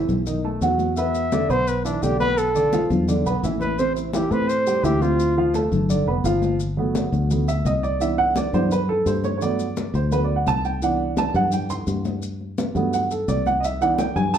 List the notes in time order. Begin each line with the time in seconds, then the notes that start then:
Already playing: E3 E4 E5
0.09 B1, high conga, low conga, maracas
0.26 D#3 D#4 D#5, high conga, maracas
0.44 A3 A4 A5, high conga
0.61 E2 F#3 F#4 F#5, high conga, maracas
0.79 high conga, maracas
0.97 B2 B3 B4 E5, high conga, maracas
1.15 high conga, maracas
1.32 D3 D4 D5, high conga, maracas
1.49 B1 B3 B4 C5 B5, maracas
1.67 B4, high conga, maracas
1.85 E3 D4 E4 E5, high conga, maracas
2.03 B1 D3 D4 G4 D5, high conga, maracas
2.20 B3 B4 B5, high conga, maracas
2.38 A4, high conga, maracas
2.55 D3 D4 D5, high conga, maracas
2.73 F3 F4 F5, high conga, maracas
2.90 E2, high conga, low conga, maracas
3.08 D3 D4 D5, high conga, low conga, maracas
3.25 B1 B3 B4 B5, high conga, maracas
3.43 A1 E3 E4 E5, high conga, maracas
3.61 B4, high conga, maracas
3.78 C3 C4 C5, high conga, maracas
3.96 E4, high conga, maracas
4.13 E3 E4 G4 E5, high conga, maracas
4.31 A2 C4 B4 C5 C6, high conga, maracas
4.49 C5, high conga, maracas
4.67 G3 G4 G5, high conga, maracas
4.83 D2 E3 E4 G4 E5, high conga, maracas
5.02 C4 F4 C5 C6, high conga, maracas
5.19 high conga, maracas
5.36 F3 F4 F5, high conga
5.54 A3 A4 A5, high conga, maracas
5.72 G1, high conga, low conga, maracas
5.89 D3 D4 D5, high conga, low conga, maracas
6.07 F1 B3 B4 B5, high conga
6.24 G1 F3 F4 F5, high conga, maracas
6.42 high conga, maracas
6.60 high conga, maracas
6.77 F#3 A3 B3, high conga
6.95 high conga, maracas
7.12 D2, high conga, maracas
7.30 F#3 A3 B3, high conga, maracas
7.48 E5, high conga, maracas
7.65 C2 D#5, high conga, maracas
7.83 D5, maracas
8.00 E3 B3 D4 E5, high conga, maracas
8.18 F#5, high conga
8.36 D5, high conga, maracas
8.53 G2 E3 B3 D4 C5, high conga, low conga, maracas
8.71 B4, high conga, low conga, maracas
8.89 A4, high conga
9.06 G2 C5, high conga, maracas
9.24 C#5, high conga, maracas
9.38 F#3 C#5, high conga, maracas
9.42 A3 B3 D5
9.59 high conga, maracas
9.77 high conga, maracas
9.94 D2 C5, high conga, maracas
10.12 F#3 A3 B3 B4, high conga, maracas
10.24 D5
10.29 high conga
10.36 F#5
10.47 C2 A5, high conga, maracas
10.65 G5, maracas
10.82 E3 B3 D4 F#5, high conga, maracas
11.00 high conga
11.17 A5, high conga, maracas
11.34 G2 F#5, high conga, low conga, maracas
11.52 G5, high conga, low conga, maracas
11.70 C6, high conga, maracas
11.87 G2, high conga, maracas
12.05 high conga, maracas
12.22 high conga, maracas
12.41 high conga
12.58 high conga, maracas
12.75 G2 F#3 A3 B3, high conga, maracas
12.93 F#5, maracas
13.11 A4, high conga, maracas
13.28 C2 D5, high conga, maracas
13.46 F#5, high conga, maracas
13.60 D#5, high conga, maracas
13.65 E5
13.81 E3 B3 D4 F#5, high conga, maracas
13.95 F#5, high conga
13.99 G5, maracas
14.16 G2 G#5, high conga, low conga, maracas
14.34 A5, high conga, low conga, maracas